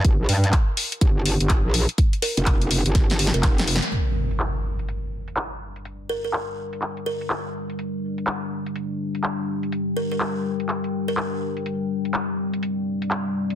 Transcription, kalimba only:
X:1
M:4/4
L:1/16
Q:"Swing 16ths" 1/4=124
K:Gm
V:1 name="Kalimba"
z16 | z2 B B z6 z B4- B | z16 | z2 B B z6 B6 |
z16 | z2 B B z6 z B4- B- | B z12 z3 |]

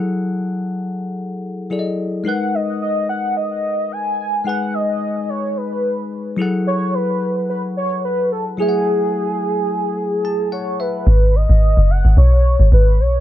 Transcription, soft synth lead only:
X:1
M:4/4
L:1/8
Q:"Swing 16ths" 1/4=109
K:G#phr
V:1 name="Soft synth lead"
z8 | f d d f d2 g2 | f d2 c B3 z | c B2 B c B A G- |
G6 c B- | B d2 f c2 B c |]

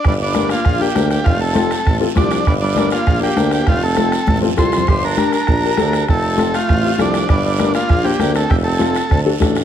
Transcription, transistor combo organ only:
X:1
M:4/4
L:1/8
Q:1/4=199
K:Gm
V:1 name="Transistor combo organ"
D D2 F2 G2 G | F A4 z D2 | D D2 F2 G2 G | F A4 z c2 |
c B2 B4- B | A3 F3 D2 | D D2 F2 G2 A | G A4 z3 |]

